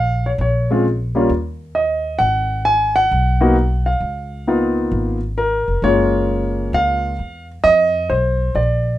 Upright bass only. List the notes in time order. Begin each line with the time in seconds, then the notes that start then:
Already playing: A#1
0.38 A#1
1.29 D#2
2.20 G#1
3.11 B1
4.00 C#2
4.92 G#1
5.68 F1
5.82 F#1
6.73 C#2
7.19 E2
7.64 F2
8.10 B1
8.55 A#1